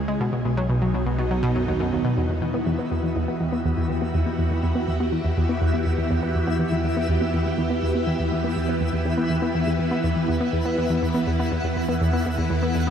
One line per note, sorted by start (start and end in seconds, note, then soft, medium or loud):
0.00 0.18 C#2 medium
0.00 0.20 C#3 medium
0.00 0.21 G#3 medium
0.00 0.21 E4 medium
0.08 0.17 G#3 medium
0.20 2.15 B1 medium
0.20 0.29 B2 medium
0.20 2.17 B2 medium
0.33 0.44 B2 medium
0.44 0.53 B2 medium
0.44 2.17 D#4 medium
0.57 0.66 F#3 medium
0.65 0.78 B2 medium
0.65 2.17 F#3 medium
0.82 0.90 F#3 medium
0.94 1.02 B2 medium
1.06 1.17 B2 medium
1.06 12.90 B3 medium
1.19 1.27 B2 medium
1.31 1.39 F#3 medium
1.43 1.52 B2 loud
1.55 1.64 F#2 medium
1.68 1.73 D#2 medium
1.80 1.92 F#2 medium
1.92 2.01 D#2 medium
2.05 2.16 B2 medium
2.17 2.25 E2 medium
2.17 10.01 E2 medium
2.17 12.90 E3 medium
2.17 12.90 E4 medium
2.17 10.06 E5 medium
2.29 2.40 E2 medium
2.29 9.55 F#4 medium
2.41 2.50 E2 medium
2.54 2.62 B3 medium
2.66 2.75 E2 medium
2.79 2.87 B3 medium
2.91 2.99 E2 medium
3.03 3.14 E2 medium
3.16 3.24 E2 medium
3.20 12.00 G4 medium
3.28 3.36 B3 medium
3.40 3.49 E2 medium
3.52 3.61 B3 medium
3.65 3.73 E2 medium
3.77 3.88 E2 medium
3.90 3.98 E2 medium
4.02 4.10 B3 medium
4.14 4.22 E2 medium
4.26 4.35 B3 medium
4.38 4.47 E2 medium
4.51 4.62 E2 medium
4.63 4.71 E2 medium
4.75 4.84 B3 medium
4.88 4.96 E2 medium
5.00 5.08 B3 medium
5.12 5.21 E2 medium
5.24 5.36 E2 medium
5.37 5.45 E2 medium
5.49 5.57 B3 medium
5.61 5.70 E2 medium
5.74 5.82 B3 medium
5.86 5.94 E2 medium
5.98 6.09 E2 medium
6.11 6.19 E2 medium
6.23 6.31 B3 medium
6.35 6.43 E2 medium
6.47 6.56 B3 medium
6.59 6.68 E2 medium
6.72 6.83 E2 medium
6.84 6.93 E2 medium
6.97 7.05 B3 medium
7.09 7.17 E2 medium
7.21 7.30 B3 medium
7.34 7.42 E2 medium
7.46 7.57 E2 medium
7.58 7.66 E2 medium
7.70 7.79 B3 medium
7.82 7.91 E2 medium
7.95 8.03 B3 medium
8.07 8.16 E2 medium
8.19 8.31 E2 medium
8.32 8.40 E2 medium
8.44 8.52 B3 medium
8.56 8.65 E2 medium
8.69 8.77 B3 medium
8.81 8.89 E2 medium
8.93 9.04 E2 medium
9.05 9.14 E2 medium
9.18 9.26 B3 medium
9.30 9.38 E2 medium
9.41 9.51 B3 medium
9.41 12.90 E4 medium
9.55 9.63 E2 medium
9.67 9.78 E2 medium
9.79 9.88 E2 medium
9.91 10.00 B3 medium
10.04 10.12 E2 medium
10.04 12.90 E2 medium
10.04 12.90 F#5 medium
10.16 10.27 E2 medium
10.28 10.37 E2 medium
10.41 10.49 B3 medium
10.53 10.61 E2 medium
10.65 10.74 B3 medium
10.78 10.86 E2 medium
10.90 11.01 E2 medium
11.02 11.11 E2 medium
11.14 11.23 B3 medium
11.27 11.35 E2 medium
11.39 11.48 B3 medium
11.52 11.60 E2 medium
11.64 11.75 E2 medium
11.76 11.85 E2 medium
11.85 11.97 B3 medium
11.85 12.90 A4 medium
12.01 12.09 E2 medium
12.13 12.22 B3 medium
12.26 12.34 E2 medium
12.38 12.49 E2 medium
12.50 12.58 E2 medium
12.62 12.71 B3 medium
12.75 12.83 E2 medium
12.87 12.90 B3 medium